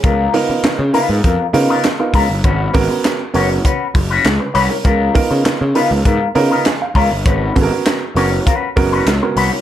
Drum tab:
HH |xoxoxoxo|xoxoxoxo|xoxoxoxo|xoxoxoxo|
CP |--x---x-|--x---x-|--x---x-|--x---x-|
SD |--o---o-|--o---o-|--o---o-|--o---o-|
BD |o---o--o|oo--oo--|oo--o--o|oo--oo--|